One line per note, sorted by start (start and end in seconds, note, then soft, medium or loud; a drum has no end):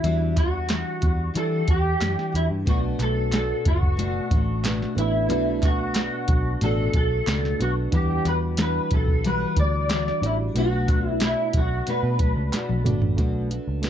0.00 0.37 E3 loud
0.00 0.39 E4 medium
0.04 0.82 E2 loud
0.04 0.37 G3 loud
0.04 0.37 D4 loud
0.04 0.35 F#4 loud
0.04 closed hi-hat medium
0.36 0.68 G3 medium
0.36 0.70 D4 soft
0.36 0.69 F#4 medium
0.36 1.37 F#4 loud
0.36 kick medium
0.36 clap medium
0.36 closed hi-hat medium
0.69 1.02 E3 medium
0.69 1.03 G3 medium
0.69 1.02 D4 medium
0.69 1.00 F#4 medium
0.69 snare loud
0.69 clap medium
0.69 closed hi-hat loud
1.01 1.29 E2 medium
1.01 1.33 G3 soft
1.01 1.34 D4 soft
1.01 1.35 F#4 medium
1.01 kick medium
1.01 closed hi-hat medium
1.34 1.67 E3 medium
1.34 1.62 E3 loud
1.34 1.68 G3 medium
1.34 1.67 D4 medium
1.34 1.69 F#4 loud
1.34 1.70 A4 medium
1.34 closed hi-hat medium
1.68 1.95 E2 loud
1.68 2.00 G3 soft
1.68 2.01 D4 medium
1.68 2.31 G4 medium
1.68 kick medium
1.68 closed hi-hat medium
2.00 2.15 F#2 medium
2.00 2.33 E3 medium
2.00 2.34 G3 medium
2.00 2.33 D4 medium
2.00 snare loud
2.00 clap loud
2.00 closed hi-hat medium
2.19 snare soft
2.32 2.47 E2 loud
2.32 2.67 G3 soft
2.32 2.67 D4 soft
2.32 2.45 E4 medium
2.32 2.66 F#4 medium
2.32 closed hi-hat medium
2.50 2.69 G2 medium
2.66 2.93 B1 medium
2.66 2.99 B2 medium
2.66 3.51 A3 medium
2.66 3.00 A3 loud
2.66 3.51 B3 medium
2.66 3.52 D4 medium
2.66 3.00 D4 medium
2.66 3.52 F#4 medium
2.66 2.97 F#4 loud
2.66 2.78 F#4 loud
2.66 3.52 B4 medium
2.66 kick loud
2.66 closed hi-hat medium
2.98 3.52 B1 loud
2.98 3.32 A3 soft
2.98 3.33 D4 soft
2.98 3.32 F#4 medium
2.98 3.34 A4 loud
2.98 clap medium
2.98 closed hi-hat medium
3.32 3.65 B2 medium
3.32 3.66 A3 medium
3.32 3.66 D4 medium
3.32 3.64 F#4 medium
3.32 3.67 A4 medium
3.32 snare loud
3.32 clap medium
3.32 closed hi-hat loud
3.65 4.18 F#1 medium
3.65 3.97 A3 medium
3.65 3.97 D4 soft
3.65 3.98 F#4 soft
3.65 5.02 F#4 medium
3.65 kick loud
3.65 closed hi-hat medium
3.83 kick medium
3.97 4.30 B2 medium
3.97 4.31 A3 medium
3.97 4.31 D4 medium
3.97 4.29 F#4 medium
3.97 closed hi-hat medium
4.30 4.84 A1 medium
4.30 4.65 D4 soft
4.30 4.64 F#4 medium
4.30 kick medium
4.30 closed hi-hat medium
4.35 4.64 A3 medium
4.64 4.97 B2 medium
4.64 4.97 A3 medium
4.64 4.96 D4 medium
4.64 4.94 F#4 medium
4.64 snare loud
4.64 clap medium
4.64 closed hi-hat medium
4.82 snare soft
4.95 5.30 A1 medium
4.95 5.17 A3 medium
4.95 5.29 A3 soft
4.95 5.18 B3 medium
4.95 5.18 D4 medium
4.95 5.30 D4 medium
4.95 5.29 F#4 medium
4.95 5.18 F#4 medium
4.95 5.19 B4 medium
4.95 closed hi-hat medium
4.99 5.66 E4 medium
5.29 6.08 B1 medium
5.29 5.62 B2 medium
5.29 6.14 A3 medium
5.29 5.63 A3 loud
5.29 6.14 B3 medium
5.29 6.14 D4 medium
5.29 5.63 D4 medium
5.29 6.15 F#4 medium
5.29 5.61 F#4 loud
5.29 6.15 B4 medium
5.29 closed hi-hat medium
5.62 5.96 A3 medium
5.62 5.96 D4 medium
5.62 5.95 F#4 medium
5.62 6.59 F#4 loud
5.62 kick medium
5.62 clap medium
5.62 closed hi-hat medium
5.95 6.28 B2 medium
5.95 6.29 A3 medium
5.95 6.29 D4 medium
5.95 snare loud
5.95 clap medium
5.95 closed hi-hat loud
5.99 6.27 F#4 medium
6.28 6.55 B1 loud
6.28 6.61 A3 medium
6.28 6.62 D4 medium
6.28 6.61 F#4 medium
6.28 kick loud
6.28 closed hi-hat medium
6.61 6.88 A1 loud
6.61 6.94 B2 medium
6.61 6.95 A3 medium
6.61 6.95 D4 medium
6.61 6.93 F#4 loud
6.61 6.95 A4 medium
6.61 closed hi-hat medium
6.94 7.21 B1 medium
6.94 7.28 D4 medium
6.94 7.27 F#4 medium
6.94 7.62 A4 loud
6.94 kick medium
6.94 closed hi-hat medium
6.98 7.26 A3 soft
7.27 7.54 C#2 loud
7.27 7.60 B2 medium
7.27 7.60 A3 medium
7.27 7.60 D4 medium
7.27 7.58 F#4 medium
7.27 snare loud
7.27 clap loud
7.27 closed hi-hat medium
7.45 snare soft
7.59 7.87 B1 loud
7.59 7.81 A3 medium
7.59 7.93 A3 soft
7.59 7.81 B3 medium
7.59 7.81 D4 medium
7.59 7.93 D4 medium
7.59 7.93 F#4 medium
7.59 7.82 F#4 medium
7.59 7.71 F#4 medium
7.59 7.82 B4 medium
7.59 closed hi-hat medium
7.91 8.19 E2 medium
7.91 8.26 E3 medium
7.91 8.76 G3 medium
7.91 8.26 G3 medium
7.91 8.77 D4 medium
7.91 8.26 D4 medium
7.91 8.77 E4 medium
7.91 8.28 G4 medium
7.91 8.78 B4 medium
7.91 8.77 F#5 medium
7.91 kick loud
7.91 closed hi-hat medium
8.25 8.78 E2 medium
8.25 8.57 G3 soft
8.25 8.58 D4 medium
8.25 8.58 F#4 medium
8.25 8.37 B4 loud
8.25 clap medium
8.25 closed hi-hat medium
8.57 8.91 E3 medium
8.57 8.91 G3 medium
8.57 8.91 D4 medium
8.57 8.89 F#4 medium
8.57 snare loud
8.57 clap medium
8.57 closed hi-hat loud
8.62 8.94 B4 loud
8.90 9.44 B1 medium
8.90 9.24 D4 soft
8.90 9.24 F#4 medium
8.90 kick loud
8.90 closed hi-hat medium
8.94 9.24 G3 soft
8.94 9.26 A4 medium
9.08 kick medium
9.23 9.57 E3 medium
9.23 9.57 G3 medium
9.23 9.57 D4 medium
9.23 9.55 F#4 medium
9.23 9.59 B4 medium
9.23 closed hi-hat medium
9.56 10.10 D2 medium
9.56 9.89 G3 medium
9.56 9.90 D4 medium
9.56 9.90 F#4 medium
9.56 9.91 D5 loud
9.56 kick medium
9.56 closed hi-hat medium
9.89 10.22 E3 medium
9.89 10.23 G3 medium
9.89 10.23 D4 medium
9.89 10.21 F#4 medium
9.89 10.25 D5 loud
9.89 snare loud
9.89 clap medium
9.89 closed hi-hat loud
10.08 snare soft
10.21 10.49 A1 loud
10.21 10.43 G3 medium
10.21 10.43 D4 medium
10.21 10.56 D4 medium
10.21 10.44 E4 medium
10.21 10.55 F#4 medium
10.21 10.44 F#4 medium
10.21 10.44 D5 medium
10.21 closed hi-hat medium
10.26 10.56 G3 soft
10.26 10.34 E4 medium
10.54 11.34 B1 loud
10.54 10.88 B2 medium
10.54 11.39 A3 medium
10.54 10.89 A3 medium
10.54 11.40 B3 medium
10.54 11.40 D4 medium
10.54 10.89 D4 medium
10.54 11.40 F#4 medium
10.54 10.87 F#4 medium
10.54 11.08 F#4 loud
10.54 11.41 B4 medium
10.54 closed hi-hat medium
10.88 11.21 A3 soft
10.88 11.22 D4 medium
10.88 11.21 F#4 medium
10.88 kick loud
10.88 clap medium
10.88 closed hi-hat medium
11.08 11.24 E4 loud
11.20 11.54 B2 medium
11.20 11.55 A3 medium
11.20 11.54 D4 medium
11.20 11.52 F#4 medium
11.20 snare loud
11.20 clap medium
11.20 closed hi-hat loud
11.24 11.57 E4 medium
11.53 11.81 B1 loud
11.53 11.87 A3 soft
11.53 11.88 D4 medium
11.53 11.86 F#4 medium
11.53 kick loud
11.53 closed hi-hat medium
11.57 11.90 F#4 medium
11.87 12.20 B2 medium
11.87 12.21 A3 medium
11.87 12.21 D4 medium
11.87 12.19 F#4 loud
11.87 12.83 B4 medium
11.87 closed hi-hat medium
12.03 12.17 B2 loud
12.19 12.33 B1 medium
12.19 12.54 D4 medium
12.19 12.53 F#4 medium
12.19 kick medium
12.19 closed hi-hat medium
12.24 12.53 A3 medium
12.36 12.50 C#2 loud
12.53 12.86 B2 medium
12.53 12.86 A3 medium
12.53 12.86 D4 medium
12.53 12.84 F#4 medium
12.53 snare medium
12.53 clap medium
12.53 closed hi-hat loud
12.69 12.83 B1 medium
12.69 high tom medium
12.84 12.99 G1 medium
12.84 13.06 A3 medium
12.84 13.06 B3 medium
12.84 13.07 D4 medium
12.84 13.18 D4 medium
12.84 13.18 F#4 medium
12.84 13.07 F#4 medium
12.84 13.08 D5 medium
12.84 closed hi-hat medium
12.84 mid tom loud
12.89 13.18 A3 medium
13.02 13.15 A1 loud
13.02 floor tom loud
13.16 13.58 B1 medium
13.16 13.51 B2 medium
13.16 13.60 A3 medium
13.16 13.52 A3 medium
13.16 13.60 D4 medium
13.16 13.51 D4 medium
13.16 13.61 F#4 medium
13.16 13.49 F#4 medium
13.16 13.61 B4 medium
13.16 kick medium
13.16 closed hi-hat medium
13.50 13.83 A3 soft
13.50 13.84 D4 soft
13.50 13.84 F#4 medium
13.50 closed hi-hat medium
13.68 13.90 C#2 medium
13.82 13.90 B2 medium
13.82 13.90 A3 medium
13.82 13.90 D4 medium
13.82 13.90 F#4 medium
13.82 13.90 B4 medium
13.82 snare medium
13.82 closed hi-hat medium